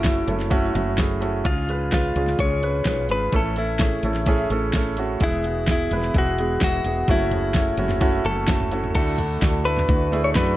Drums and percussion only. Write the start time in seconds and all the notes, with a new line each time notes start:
0.04 kick, snare, closed hi-hat
0.28 closed hi-hat
0.40 snare
0.51 kick, closed hi-hat
0.75 closed hi-hat
0.98 kick, snare, closed hi-hat
1.22 closed hi-hat
1.45 kick, closed hi-hat
1.69 closed hi-hat
1.92 kick, snare, closed hi-hat
2.16 closed hi-hat
2.27 snare
2.39 kick, closed hi-hat
2.63 closed hi-hat
2.85 kick, snare, closed hi-hat
3.09 closed hi-hat
3.32 kick, closed hi-hat
3.56 closed hi-hat
3.79 kick, snare, closed hi-hat
4.03 closed hi-hat
4.14 snare
4.26 kick, closed hi-hat
4.50 closed hi-hat
4.73 kick, snare, closed hi-hat
4.97 closed hi-hat
5.20 kick, closed hi-hat
5.44 closed hi-hat
5.67 kick, snare, closed hi-hat
5.91 closed hi-hat
6.03 snare
6.14 kick, closed hi-hat
6.38 closed hi-hat
6.61 kick, snare, closed hi-hat
6.84 closed hi-hat
7.08 kick, closed hi-hat
7.31 closed hi-hat, floor tom
7.54 kick, snare, closed hi-hat
7.77 closed hi-hat
7.89 snare, floor tom
8.01 kick, closed hi-hat
8.25 closed hi-hat
8.48 kick, snare, closed hi-hat
8.60 floor tom
8.71 closed hi-hat
8.84 floor tom
8.95 kick, closed hi-hat, crash
9.18 closed hi-hat, floor tom
9.42 kick, snare, closed hi-hat
9.66 closed hi-hat
9.77 snare, floor tom
9.89 kick, closed hi-hat
10.13 closed hi-hat
10.35 kick, snare, closed hi-hat